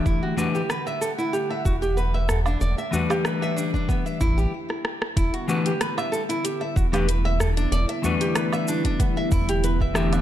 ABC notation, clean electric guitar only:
X:1
M:4/4
L:1/16
Q:"Swing 16ths" 1/4=94
K:Em
V:1 name="Clean electric guitar"
[E,A,DGe]2 [E,A,DGB] z12 z | z2 [E,G,A,DB]8- [E,G,A,DB]2 z4 | z2 [E,A,DGB] z8 [E,A,DGB] z4 | z2 [E,G,A,DB]12 [E,A,DGe]2 |]